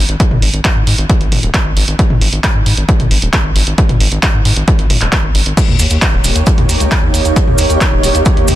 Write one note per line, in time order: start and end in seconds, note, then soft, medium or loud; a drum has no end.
0.09 0.16 G#1 medium
0.09 closed hi-hat medium
0.20 kick loud
0.20 closed hi-hat medium
0.31 0.38 G#1 medium
0.31 mid tom medium
0.42 0.49 G#1 loud
0.42 open hi-hat loud
0.53 0.60 G#1 medium
0.53 closed hi-hat medium
0.65 kick loud
0.65 clap loud
0.65 closed hi-hat medium
0.76 0.83 G#2 medium
0.87 0.94 G#2 loud
0.87 open hi-hat loud
0.98 1.05 G#1 medium
0.98 closed hi-hat medium
1.10 kick loud
1.10 closed hi-hat medium
1.21 1.28 G#1 medium
1.21 closed hi-hat soft
1.32 1.39 G#1 loud
1.32 open hi-hat loud
1.32 mid tom medium
1.43 1.50 D#1 medium
1.43 closed hi-hat medium
1.54 kick loud
1.54 clap loud
1.54 closed hi-hat medium
1.66 1.72 G#1 medium
1.77 1.84 G#1 loud
1.77 open hi-hat loud
1.88 1.95 G#1 medium
1.88 closed hi-hat medium
1.99 kick loud
1.99 closed hi-hat medium
2.10 2.17 G#1 medium
2.10 mid tom medium
2.21 2.28 G#1 medium
2.21 open hi-hat loud
2.33 2.40 G#1 medium
2.33 closed hi-hat medium
2.44 kick loud
2.44 clap loud
2.44 closed hi-hat medium
2.55 2.62 G#2 medium
2.66 2.73 G#2 medium
2.66 open hi-hat loud
2.77 2.84 G#1 medium
2.77 closed hi-hat medium
2.89 kick loud
2.89 closed hi-hat medium
3.00 3.07 G#1 medium
3.00 closed hi-hat soft
3.00 mid tom medium
3.11 3.18 G#1 medium
3.11 open hi-hat loud
3.22 3.29 D#1 medium
3.22 closed hi-hat medium
3.33 kick loud
3.33 clap loud
3.33 closed hi-hat medium
3.45 3.52 G#1 medium
3.56 3.63 G#1 loud
3.56 open hi-hat loud
3.67 3.74 G#1 medium
3.67 closed hi-hat medium
3.78 kick loud
3.78 closed hi-hat medium
3.89 3.96 G#1 medium
3.89 closed hi-hat soft
3.89 mid tom medium
4.00 4.08 G#1 loud
4.00 open hi-hat loud
4.12 4.19 G#1 medium
4.12 closed hi-hat medium
4.23 kick loud
4.23 clap loud
4.23 closed hi-hat medium
4.34 4.41 G#2 medium
4.45 4.52 G#2 loud
4.45 open hi-hat loud
4.56 4.63 G#1 medium
4.56 closed hi-hat medium
4.68 kick loud
4.68 closed hi-hat medium
4.79 4.86 G#1 medium
4.79 closed hi-hat soft
4.90 4.97 G#1 loud
4.90 open hi-hat loud
4.90 mid tom medium
5.01 5.08 D#1 medium
5.01 clap soft
5.01 closed hi-hat medium
5.12 kick loud
5.12 clap loud
5.12 closed hi-hat medium
5.24 5.31 G#1 medium
5.35 5.42 G#1 loud
5.35 open hi-hat loud
5.46 5.53 G#1 medium
5.46 closed hi-hat medium
5.57 kick loud
5.57 closed hi-hat medium
5.57 crash medium
5.57 maracas soft
5.68 5.75 D#2 medium
5.68 mid tom medium
5.79 5.87 D#2 loud
5.79 open hi-hat loud
5.79 maracas medium
5.90 5.98 D#2 medium
5.90 closed hi-hat medium
5.90 maracas medium
6.02 kick loud
6.02 clap loud
6.02 closed hi-hat medium
6.02 maracas soft
6.13 6.20 D#1 medium
6.24 6.31 D#1 loud
6.24 open hi-hat loud
6.24 maracas medium
6.35 6.43 D#2 medium
6.35 closed hi-hat medium
6.35 maracas soft
6.46 kick loud
6.46 closed hi-hat medium
6.46 maracas soft
6.58 6.65 D#2 medium
6.58 closed hi-hat soft
6.58 mid tom medium
6.69 6.76 D#2 loud
6.69 open hi-hat loud
6.69 maracas medium
6.80 6.87 C#2 medium
6.80 closed hi-hat medium
6.80 maracas medium
6.91 kick loud
6.91 clap loud
6.91 closed hi-hat medium
6.91 maracas soft
7.03 7.10 D#2 medium
7.14 7.21 D#2 loud
7.14 open hi-hat loud
7.14 maracas medium
7.25 7.32 D#2 medium
7.25 closed hi-hat medium
7.25 maracas medium
7.36 kick loud
7.36 closed hi-hat medium
7.36 maracas soft
7.47 7.54 D#2 medium
7.47 mid tom medium
7.58 7.66 D#2 medium
7.58 open hi-hat loud
7.58 maracas loud
7.70 7.77 D#2 medium
7.70 closed hi-hat medium
7.70 maracas medium
7.81 kick loud
7.81 clap loud
7.81 closed hi-hat medium
7.81 maracas soft
7.92 7.99 D#1 medium
8.03 8.10 D#1 loud
8.03 open hi-hat loud
8.03 maracas medium
8.15 8.22 D#2 medium
8.15 closed hi-hat soft
8.15 maracas medium
8.25 kick loud
8.25 closed hi-hat medium
8.25 maracas soft
8.37 8.44 D#2 medium
8.37 closed hi-hat soft
8.48 8.55 D#2 loud
8.48 open hi-hat loud
8.48 mid tom medium
8.48 maracas loud